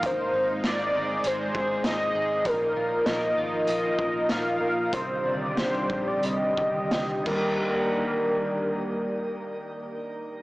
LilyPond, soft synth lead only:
\new Staff \with { instrumentName = "Soft synth lead" } { \time 4/4 \key ees \major \tempo 4 = 94 c''4 d''4 c''4 ees''4 | bes'4 ees''4 ees''4 f''4 | c''8. d''16 c''8. d''16 ees''4. bes'8~ | bes'1 | }